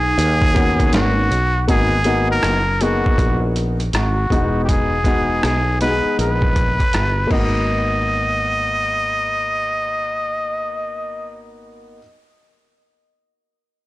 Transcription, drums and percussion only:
0.19 closed hi-hat
0.42 kick
0.56 kick, closed hi-hat
0.80 kick, closed hi-hat
0.93 snare, closed hi-hat
1.32 closed hi-hat
1.68 kick, closed hi-hat
2.04 closed hi-hat
2.43 cross-stick, closed hi-hat
2.81 closed hi-hat
3.06 kick
3.18 kick, closed hi-hat
3.56 closed hi-hat
3.80 closed hi-hat
3.93 cross-stick, closed hi-hat
4.30 kick, closed hi-hat
4.69 kick, closed hi-hat
5.04 kick, cross-stick, closed hi-hat
5.43 cross-stick, closed hi-hat
5.81 closed hi-hat
6.19 closed hi-hat
6.42 kick
6.56 kick, closed hi-hat
6.80 kick, closed hi-hat
6.93 cross-stick, closed hi-hat
7.31 kick, crash

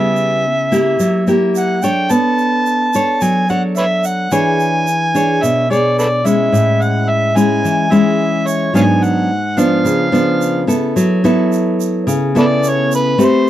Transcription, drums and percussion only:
0.16 shaker
0.73 shaker
1.00 shaker
1.27 shaker
1.55 shaker
1.82 shaker
2.10 shaker
2.38 shaker
2.66 shaker
2.93 shaker
3.21 shaker
3.49 shaker
3.76 shaker
4.04 shaker
4.32 shaker
4.60 shaker
4.87 shaker
5.15 shaker
5.44 shaker
5.72 shaker
5.99 shaker
6.26 shaker
6.54 shaker
6.82 shaker
7.37 shaker
7.65 shaker
7.92 shaker
8.47 shaker
8.75 shaker
9.03 shaker
9.58 shaker
9.86 shaker
10.14 shaker
10.42 shaker
10.69 shaker
10.97 shaker
11.24 shaker
11.52 shaker
11.80 shaker
12.08 shaker
12.36 shaker
12.64 shaker
12.92 shaker
13.20 shaker

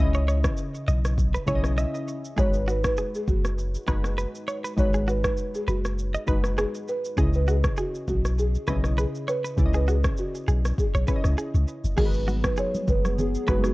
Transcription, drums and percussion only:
0.14 shaker
0.28 shaker
0.44 kick, cross-stick, shaker
0.57 shaker
0.75 shaker
0.88 shaker
1.05 cross-stick, shaker
1.18 kick, shaker
1.35 shaker
1.47 kick, shaker
1.64 cross-stick, shaker
1.78 shaker
1.95 shaker
2.08 shaker
2.25 shaker
2.38 kick, shaker
2.54 shaker
2.68 shaker
2.84 kick, cross-stick, shaker
2.97 shaker
3.15 shaker
3.28 kick, shaker
3.45 cross-stick, shaker
3.59 shaker
3.75 shaker
3.87 kick, cross-stick, shaker
4.04 cross-stick, shaker
4.18 shaker
4.35 shaker
4.48 shaker
4.65 shaker
4.78 kick, shaker
4.94 shaker
5.09 shaker
5.24 kick, cross-stick, shaker
5.37 shaker
5.55 shaker
5.68 shaker
5.85 cross-stick, shaker
5.99 shaker
6.15 shaker
6.27 kick, shaker
6.44 cross-stick, shaker
6.58 cross-stick, shaker
6.75 shaker
6.88 shaker
7.05 shaker
7.18 kick, shaker
7.34 shaker
7.49 shaker
7.64 kick, cross-stick, shaker
7.77 shaker
7.95 shaker
8.08 kick, shaker
8.25 cross-stick, shaker
8.39 shaker
8.55 shaker
8.67 kick, cross-stick, shaker
8.84 cross-stick, shaker
8.98 shaker
9.15 shaker
9.28 shaker
9.45 shaker
9.58 kick, shaker
9.74 shaker
9.89 shaker
10.04 kick, cross-stick, shaker
10.17 shaker
10.35 shaker
10.48 shaker
10.65 cross-stick, shaker
10.78 kick, shaker
10.95 shaker
11.07 kick, shaker
11.24 cross-stick, shaker
11.38 shaker
11.55 shaker
11.68 shaker
11.85 shaker
11.98 kick, crash, low conga, shaker
12.14 shaker
12.28 high conga, shaker
12.44 kick, cross-stick, shaker
12.57 shaker
12.75 high conga, shaker
12.88 kick, high conga, low conga, shaker
13.05 cross-stick, high conga, shaker
13.18 low conga, shaker
13.35 shaker
13.47 kick, cross-stick, high conga, shaker
13.64 cross-stick, shaker

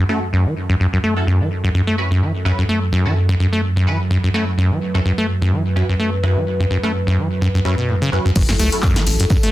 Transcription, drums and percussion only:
8.35 kick, crash, tambourine
8.48 snare, tambourine
8.59 cross-stick, open hi-hat, ride, tambourine
8.72 closed hi-hat, tambourine
8.83 kick, clap, tambourine
8.96 snare, closed hi-hat, tambourine
9.06 snare, open hi-hat, ride, tambourine
9.20 closed hi-hat, tambourine
9.30 kick, cross-stick, tambourine
9.43 closed hi-hat, tambourine

